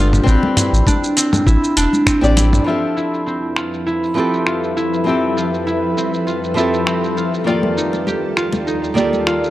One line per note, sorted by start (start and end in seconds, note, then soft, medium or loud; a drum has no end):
0.00 0.19 G1 medium
0.00 0.22 B3 medium
0.00 0.26 C4 medium
0.00 0.23 D4 medium
0.00 0.86 D4 medium
0.00 0.24 F4 medium
0.00 0.63 F4 loud
0.00 2.02 G4 medium
0.00 0.25 A4 loud
0.13 mid tom medium
0.13 shaker soft
0.23 0.37 A1 loud
0.23 1.72 C4 medium
0.23 1.16 C4 medium
0.23 1.73 D4 medium
0.23 1.74 G4 medium
0.23 kick loud
0.28 1.75 B4 medium
0.28 shaker soft
0.43 high conga medium
0.43 low conga medium
0.57 1.46 E4 medium
0.57 closed hi-hat medium
0.57 mid tom medium
0.57 shaker medium
0.72 0.82 A1 medium
0.72 shaker soft
0.87 1.77 D4 loud
0.87 kick loud
0.87 high conga medium
0.87 shaker soft
1.04 shaker soft
1.17 2.06 C4 medium
1.17 closed hi-hat medium
1.17 shaker medium
1.33 mid tom medium
1.33 high conga loud
1.33 shaker soft
1.47 1.57 A1 medium
1.47 2.36 E4 medium
1.47 kick loud
1.47 shaker soft
1.64 shaker soft
1.77 1.87 E1 medium
1.77 4.57 D4 loud
1.77 closed hi-hat medium
1.77 shaker medium
1.93 high conga medium
1.93 shaker soft
2.07 3.26 C4 medium
2.07 finger snap medium
2.07 kick loud
2.07 shaker soft
2.21 2.59 A1 medium
2.21 2.63 C4 medium
2.21 2.63 D4 medium
2.21 2.64 G4 medium
2.21 2.64 D5 loud
2.21 shaker soft
2.36 2.73 E4 medium
2.36 closed hi-hat loud
2.36 high conga medium
2.36 shaker medium
2.53 mid tom medium
2.53 shaker soft
2.64 7.43 F2 medium
2.64 4.12 F3 medium
2.64 7.43 F3 medium
2.64 9.50 G3 medium
2.64 4.13 C4 medium
2.64 3.03 F4 medium
2.64 9.50 A4 medium
2.64 2.69 B4 medium
2.64 7.43 B4 medium
2.64 7.43 E5 medium
2.64 4.14 E5 medium
2.64 shaker soft
2.69 4.14 G4 medium
2.69 4.15 A4 medium
2.97 3.63 E4 medium
2.97 shaker medium
3.14 shaker soft
3.26 4.16 C4 medium
3.26 shaker soft
3.56 3.92 F4 medium
3.56 finger snap medium
3.56 shaker medium
3.74 shaker soft
3.86 4.53 E4 medium
3.86 shaker soft
4.04 shaker soft
4.14 5.02 F3 medium
4.14 5.03 C4 medium
4.14 5.06 C4 medium
4.14 5.04 G4 medium
4.14 5.03 B4 medium
4.14 5.04 E5 medium
4.14 shaker medium
4.19 5.05 A4 medium
4.34 shaker soft
4.47 4.83 F4 medium
4.47 finger snap medium
4.47 shaker soft
4.64 shaker soft
4.77 5.43 E4 medium
4.77 shaker medium
4.94 shaker soft
5.04 6.52 F3 medium
5.04 6.53 C4 medium
5.04 5.97 C4 medium
5.04 6.52 B4 medium
5.04 6.54 E5 medium
5.04 shaker soft
5.08 6.54 G4 medium
5.08 6.55 A4 medium
5.37 5.73 F4 medium
5.37 shaker medium
5.54 shaker soft
5.67 6.33 E4 medium
5.67 shaker soft
5.97 6.86 C4 medium
5.97 shaker medium
6.14 shaker soft
6.27 6.63 F4 medium
6.27 shaker soft
6.44 shaker soft
6.54 7.42 F3 medium
6.54 7.43 C4 medium
6.54 7.23 E4 medium
6.54 7.43 B4 medium
6.54 7.44 E5 medium
6.54 shaker medium
6.58 7.44 G4 medium
6.58 7.45 A4 medium
6.74 shaker soft
6.87 9.50 C4 medium
6.87 finger snap medium
6.87 shaker soft
7.04 shaker soft
7.17 7.46 F4 medium
7.17 shaker medium
7.34 shaker soft
7.44 9.50 D#2 medium
7.44 8.92 D#3 medium
7.44 9.50 D#3 medium
7.44 8.93 A#3 medium
7.44 8.36 F4 medium
7.44 9.50 F4 medium
7.44 8.94 F4 medium
7.44 8.93 D5 medium
7.44 9.50 D5 medium
7.44 muted conga medium
7.44 shaker soft
7.49 8.94 G4 medium
7.49 8.95 A4 medium
7.63 high conga medium
7.77 8.66 D#4 medium
7.77 shaker medium
7.93 muted conga soft
7.93 shaker soft
8.07 8.97 G4 medium
8.07 high conga medium
8.07 shaker soft
8.37 9.26 F4 medium
8.37 finger snap medium
8.37 shaker medium
8.53 muted conga medium
8.53 high conga medium
8.53 shaker soft
8.67 9.50 D#4 medium
8.67 shaker soft
8.84 shaker soft
8.94 9.50 D#3 medium
8.94 9.50 A#3 medium
8.94 9.50 F4 medium
8.94 9.50 G4 medium
8.94 9.50 D5 medium
8.94 muted conga soft
8.94 low conga medium
8.94 shaker medium
8.98 9.50 G4 medium
8.98 9.50 A4 medium
9.13 high conga medium
9.13 shaker soft
9.27 9.50 F4 medium
9.27 finger snap medium
9.27 shaker soft
9.44 shaker soft